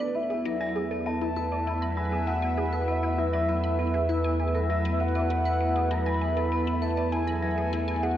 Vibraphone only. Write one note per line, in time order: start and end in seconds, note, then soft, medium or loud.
0.00 0.15 B4 loud
0.15 0.25 B3 medium
0.30 0.40 B3 medium
0.46 0.59 F#3 medium
0.61 0.67 F#3 loud
0.76 0.85 B3 medium
0.91 1.05 B3 medium
1.06 1.12 B3 loud
1.21 1.36 B3 medium
1.36 1.51 B4 medium
1.51 1.61 B3 medium
1.67 1.76 B3 medium
1.82 1.96 F#3 medium
1.97 2.03 F#3 medium
2.12 2.22 B3 medium
2.27 2.41 B3 medium
2.42 2.48 B3 loud
2.58 2.72 B3 medium
2.73 2.87 B4 loud
2.88 2.98 B3 medium
3.03 3.13 B3 medium
3.18 3.32 F#3 medium
3.33 3.39 F#3 loud
3.48 3.58 B3 medium
3.64 3.78 B3 medium
3.79 3.85 B3 loud
3.94 4.08 B3 medium
4.09 4.24 B4 loud
4.24 4.34 B3 medium
4.40 4.49 B3 medium
4.55 4.69 F#3 medium
4.70 4.76 F#3 loud
4.85 4.95 B3 medium
5.00 5.14 B3 medium
5.15 5.21 B3 medium
5.31 5.45 B3 medium
5.46 5.60 B4 loud
5.61 5.70 B3 medium
5.76 5.86 B3 medium
5.91 6.05 F#3 medium
6.06 6.12 F#3 loud
6.21 6.31 B3 medium
6.37 6.50 B3 medium
6.52 6.57 B3 loud
6.67 6.81 B3 medium
6.82 6.96 B4 medium
6.97 7.07 B3 medium
7.12 7.22 B3 medium
7.27 7.41 F#3 medium
7.42 7.48 F#3 loud
7.58 7.67 B3 medium
7.73 7.87 B3 medium
7.88 7.94 B3 loud
8.03 8.17 B3 medium